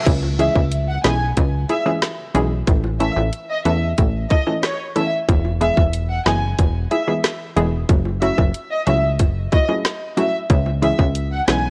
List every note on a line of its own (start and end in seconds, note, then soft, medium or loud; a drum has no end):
0.07 0.49 C#2 loud
0.07 kick loud
0.07 closed hi-hat medium
0.07 crash loud
0.07 high bongo medium
0.23 high bongo medium
0.39 0.52 E3 medium
0.39 0.52 G#3 medium
0.39 0.52 C#4 medium
0.39 0.52 E4 medium
0.39 0.52 G#4 medium
0.39 0.53 E5 medium
0.39 closed hi-hat medium
0.56 0.98 C#2 loud
0.56 kick medium
0.56 high bongo medium
0.72 closed hi-hat medium
0.88 1.02 F#5 medium
1.04 1.33 B1 medium
1.04 1.17 E3 medium
1.04 1.17 G#3 medium
1.04 1.17 C#4 medium
1.04 1.18 E4 medium
1.04 1.18 G#4 medium
1.04 1.19 G#5 medium
1.04 cross-stick medium
1.04 snare loud
1.04 closed hi-hat medium
1.37 1.65 C#2 loud
1.37 kick medium
1.37 closed hi-hat medium
1.37 high bongo medium
1.69 1.76 E4 medium
1.69 1.76 G#4 medium
1.69 1.84 E5 medium
1.69 closed hi-hat soft
1.69 high bongo medium
1.86 1.99 E3 medium
1.86 1.99 G#3 medium
1.86 1.99 C#4 medium
1.86 1.99 E4 medium
1.86 1.99 G#4 medium
1.86 high bongo medium
2.02 cross-stick loud
2.02 snare loud
2.02 closed hi-hat medium
2.35 2.63 B1 loud
2.35 2.48 E3 medium
2.35 2.48 G#3 medium
2.35 2.48 C#4 medium
2.35 2.48 E4 medium
2.35 2.48 G#4 loud
2.35 closed hi-hat medium
2.35 low bongo medium
2.67 3.10 A1 loud
2.67 kick loud
2.67 closed hi-hat medium
2.67 high bongo medium
2.84 high bongo medium
3.00 3.13 E3 medium
3.00 3.13 A3 medium
3.00 3.13 C#4 medium
3.00 3.13 E4 medium
3.00 3.13 A4 medium
3.00 3.14 E5 medium
3.00 closed hi-hat medium
3.16 3.30 A1 loud
3.16 high bongo medium
3.33 closed hi-hat medium
3.49 3.63 D#5 medium
3.65 3.94 E2 loud
3.65 3.78 E3 medium
3.65 3.78 A3 medium
3.65 3.78 C#4 medium
3.65 3.78 E4 medium
3.65 3.78 A4 medium
3.65 3.80 E5 medium
3.65 closed hi-hat medium
3.98 4.26 A1 loud
3.98 kick medium
3.98 closed hi-hat medium
3.98 high bongo medium
4.30 4.37 E4 medium
4.30 4.37 A4 medium
4.30 4.45 D#5 medium
4.30 kick loud
4.30 closed hi-hat soft
4.30 high bongo medium
4.46 4.60 E3 medium
4.46 4.60 A3 medium
4.46 4.60 C#4 medium
4.46 4.60 E4 medium
4.46 4.60 A4 medium
4.46 high bongo medium
4.63 4.77 C#5 medium
4.63 cross-stick loud
4.63 snare loud
4.63 closed hi-hat medium
4.95 5.09 E3 medium
4.95 5.09 A3 medium
4.95 5.09 C#4 medium
4.95 5.09 E4 medium
4.95 5.09 A4 medium
4.95 5.10 E5 medium
4.95 closed hi-hat medium
4.95 low bongo medium
5.28 5.71 E1 loud
5.28 kick loud
5.28 closed hi-hat medium
5.28 high bongo medium
5.44 high bongo medium
5.61 5.74 E3 medium
5.61 5.74 G#3 medium
5.61 5.74 B3 medium
5.61 5.74 E4 medium
5.61 5.74 G#4 medium
5.61 5.75 E5 medium
5.61 closed hi-hat medium
5.77 6.20 E1 loud
5.77 kick loud
5.77 high bongo medium
5.93 closed hi-hat medium
6.10 6.24 F#5 medium
6.26 6.54 F#1 medium
6.26 6.39 E3 medium
6.26 6.39 G#3 medium
6.26 6.39 B3 medium
6.26 6.39 E4 medium
6.26 6.39 G#4 medium
6.26 6.40 G#5 medium
6.26 cross-stick loud
6.26 snare loud
6.26 closed hi-hat medium
6.59 6.87 E1 loud
6.59 kick medium
6.59 closed hi-hat medium
6.59 high bongo medium
6.91 6.98 E4 medium
6.91 6.98 G#4 medium
6.91 7.06 E5 medium
6.91 closed hi-hat soft
6.91 high bongo medium
7.07 7.21 E3 medium
7.07 7.21 G#3 medium
7.07 7.21 B3 medium
7.07 7.21 E4 medium
7.07 7.21 G#4 medium
7.07 high bongo medium
7.24 cross-stick loud
7.24 snare loud
7.24 closed hi-hat medium
7.56 7.85 E1 medium
7.56 7.70 E3 medium
7.56 7.70 G#3 medium
7.56 7.70 B3 medium
7.56 7.70 E4 medium
7.56 7.70 G#4 loud
7.56 closed hi-hat medium
7.56 low bongo medium
7.89 8.32 F#1 loud
7.89 kick loud
7.89 closed hi-hat medium
7.89 high bongo medium
8.05 high bongo medium
8.22 8.35 F#3 medium
8.22 8.35 A3 medium
8.22 8.35 C#4 medium
8.22 8.35 E4 medium
8.22 8.35 F#4 medium
8.22 8.36 E5 medium
8.22 closed hi-hat medium
8.38 8.52 F#1 medium
8.38 kick medium
8.38 high bongo medium
8.54 closed hi-hat medium
8.71 8.85 D#5 medium
8.87 9.21 C#2 medium
8.87 9.00 F#3 medium
8.87 9.00 A3 medium
8.87 9.00 C#4 medium
8.87 9.00 E4 medium
8.87 9.00 F#4 medium
8.87 9.01 E5 medium
8.87 closed hi-hat medium
8.87 low bongo medium
9.19 9.48 F#1 loud
9.19 kick medium
9.19 closed hi-hat medium
9.19 high bongo medium
9.52 9.59 E4 medium
9.52 9.59 F#4 medium
9.52 9.66 D#5 medium
9.52 kick loud
9.52 closed hi-hat soft
9.52 high bongo medium
9.68 9.81 F#3 medium
9.68 9.81 A3 medium
9.68 9.82 C#4 medium
9.68 9.82 E4 medium
9.68 9.82 G#4 medium
9.68 high bongo medium
9.85 cross-stick medium
9.85 snare loud
9.85 closed hi-hat medium
10.17 10.30 F#3 medium
10.17 10.30 A3 medium
10.17 10.30 C#4 medium
10.17 10.30 E4 medium
10.17 10.31 F#4 medium
10.17 10.32 E5 medium
10.17 closed hi-hat medium
10.17 low bongo medium
10.50 10.92 C#2 loud
10.50 kick loud
10.50 closed hi-hat medium
10.50 high bongo medium
10.66 high bongo medium
10.82 10.95 E3 medium
10.82 10.96 G#3 medium
10.82 10.96 C#4 medium
10.82 10.96 E4 medium
10.82 10.96 G#4 medium
10.82 10.97 E5 medium
10.82 closed hi-hat medium
10.99 11.41 C#2 loud
10.99 kick medium
10.99 high bongo medium
11.15 closed hi-hat medium
11.32 11.46 F#5 medium
11.48 11.70 B1 medium
11.48 11.61 E3 medium
11.48 11.61 G#3 medium
11.48 11.61 C#4 medium
11.48 11.61 E4 medium
11.48 11.61 B4 medium
11.48 11.62 G#5 medium
11.48 cross-stick loud
11.48 snare loud
11.48 closed hi-hat medium